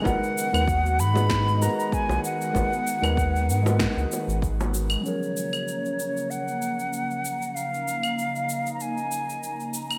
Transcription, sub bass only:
X:1
M:4/4
L:1/16
Q:"Swing 16ths" 1/4=96
K:F#
V:1 name="Sub bass" clef=bass
G,,, z2 D,,3 G,,4 z3 B,,, z2 | G,,, z2 D,,3 G,,2 z C,, z G,,,4 z | z16 | z16 |]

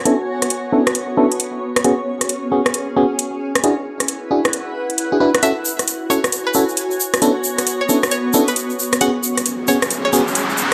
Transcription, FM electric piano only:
X:1
M:4/4
L:1/16
Q:"Swing 16ths" 1/4=134
K:C#phr
V:1 name="FM electric piano"
[B,CDEA] z4 z [B,CDEA] z3 [B,CDEA] z4 z | [B,CFG] z4 z [B,CFG] z3 [B,CFG] z4 z | [DEFG] z4 z [DEFG] z6 [DEFG] [DEFB] z | [CEFA] z4 z [CEFA] z3 [CEFA] z4 z |
[B,CDEA] z4 z [B,CDEA] z3 [B,CDEA] z4 z | [B,CFG] z4 z [B,CFG] z3 [B,CFG] z4 z |]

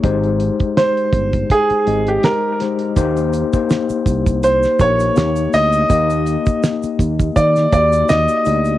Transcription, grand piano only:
X:1
M:4/4
L:1/16
Q:"Swing 16ths" 1/4=82
K:Eb
V:1 name="Grand piano"
z4 c4 A3 G B2 z2 | z8 c2 _d4 e2- | e4 z4 d2 d2 e4 |]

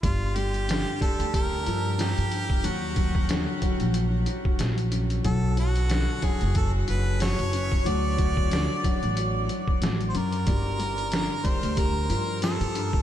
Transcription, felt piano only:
X:1
M:4/4
L:1/8
Q:"Swing 16ths" 1/4=92
K:Gm
V:1 name="Felt piano" clef=bass
G, G, D, G, G F, F, G,, | _G, G, D, G, _G G, G, _G,, | ^F, F, D, F, ^F F, F, ^F,, | ^F, F, D, F, ^F F, F, ^F,, |
G, G, D, G, G F, F, G,, |]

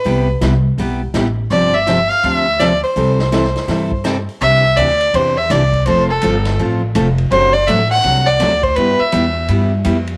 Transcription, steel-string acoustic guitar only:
X:1
M:4/4
L:1/16
Q:"Swing" 1/4=165
K:C
V:1 name="Steel-string acoustic guitar"
[C,G,B,EG]2 z2 [C,G,B,EG] z3 [C,G,B,EG]2 z2 [C,G,B,EG] z3 | [C,F,CDG]2 z2 [C,F,CDG] z3 [C,F,CDG]2 z2 [C,F,CDG] z3 | [C,E,G,CEA]2 z2 [C,E,G,CEA] z3 [C,E,G,CEA]2 z2 [C,E,G,CEA] z3 | [C,E,DG]2 z2 [C,E,DG] z3 [C,E,DG]2 z2 [C,E,DG] z3 |
[F,A,CFA]2 z2 [F,A,CFA] z3 [F,A,CFA]2 z2 [F,A,CFA] z3 | [C,^F,A,D^F]2 z2 [C,F,A,DF] z3 [C,F,A,DF]2 z2 [C,F,A,DF] z3 | [G,B,EG]2 z2 [G,B,EG] z3 [G,B,EG]2 z2 [G,B,EG] z3 |]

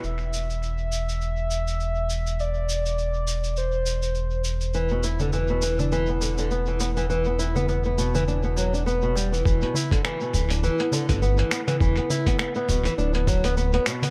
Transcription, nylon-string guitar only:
X:1
M:4/4
L:1/16
Q:"Swing 16ths" 1/4=102
K:Em
V:1 name="Nylon-string guitar" clef=bass
z16 | z16 | E, B,, E D, E, B,, E, D E, B, D, D, B, E, B, E, | E, B, E B, B, B, B,, E, D B, F, D B, B,, G, E, |
E, B,, E D, E, B,, E, D E, B, D, D, B, E, B, E, | E, B, E B, B, B, B,, E, D B, F, B, B, B, B,, B, |]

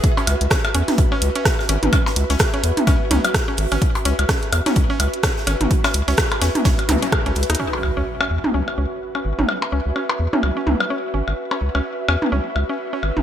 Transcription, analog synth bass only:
X:1
M:4/4
L:1/16
Q:"Swing 16ths" 1/4=127
K:C#m
V:1 name="Analog synth bass" clef=bass
z2 C,, C,, z2 E,, z C,, z C,, z3 G,,, G,,, | z2 C,, C,, z2 E,, z C,, z C,, z3 G,,, G,,, | z2 C,, C,, z2 E,, z C,, z C,, z3 G,,, G,,, | z2 C,, C,, z2 E,, z C,, z C,, z2 C,, C,, D,, |
z2 C,, C,, z2 E,, z C,, z C,, z3 G,,, G,,, | z2 C,, C,, z2 E,, z C,, z C,, z3 G,,, G,,, | z2 C,, C,, z2 E,, z C,, z C,, z3 G,,, G,,, |]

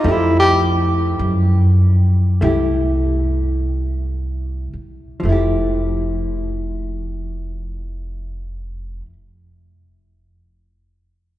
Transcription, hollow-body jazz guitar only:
X:1
M:4/4
L:1/8
Q:"Swing" 1/4=39
K:F
V:1 name="Hollow-body jazz guitar"
[F,A,EG]4 [A,EG]4 | [F,A,EG]8 |]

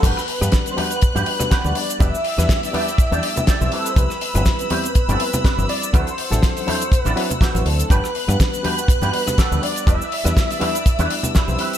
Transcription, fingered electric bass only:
X:1
M:4/4
L:1/16
Q:"Swing 16ths" 1/4=122
K:G
V:1 name="Fingered electric bass" clef=bass
G,,, z2 G,, z4 z G,, z3 D,, z2 | E,,, z2 E,, z4 z E,, z3 B,,, z2 | C,, z2 G,,, z4 z G,,, z3 G,,, z2 | D,, z2 A,,, z4 z A,,, z3 A,,, D,, z |
G,,, z2 G,, z4 z G,, z3 D,, z2 | E,,, z2 E,, z4 z E,, z3 B,,, z2 |]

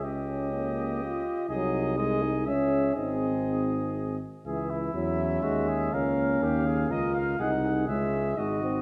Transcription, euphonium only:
X:1
M:3/4
L:1/8
Q:1/4=123
K:C#m
V:1 name="Euphonium"
C4- C z | F,2 G, D C2 | ^B,4- B, z | E,2 F,2 G,2 |
C4- C z | D2 G,2 G, ^B, |]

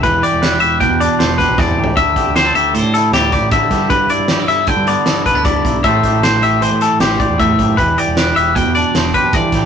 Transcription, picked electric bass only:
X:1
M:5/4
L:1/16
Q:1/4=155
K:Em
V:1 name="Picked electric bass" clef=bass
E,,,2 z E,,,3 E,,,3 E,,2 z E,,,3 B,,, E,,2 D,,2 | D,,2 z D,,3 D,,3 D,2 z D,,3 A,,,3 G,,2 | G,,,2 z G,,,3 G,,,3 G,,2 z G,,,3 D,,3 B,,,2 | A,,,2 z A,,,3 A,,,3 A,,2 z A,,,3 E,,3 F,,,2 |
E,,,2 z E,,,3 E,,,3 E,,2 z E,,,2 F,,,2 G,,,2 A,,,2 |]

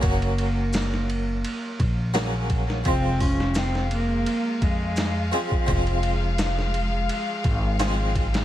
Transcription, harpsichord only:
X:1
M:4/4
L:1/8
Q:"Swing 16ths" 1/4=85
K:Fphr
V:1 name="Harpsichord"
[G,B,DG]6 [G,B,DA]2 | [F,A,Fc]6- [F,A,Fc] [F,A,CA] | [F,A,CF]6 [F,A,CA]2 |]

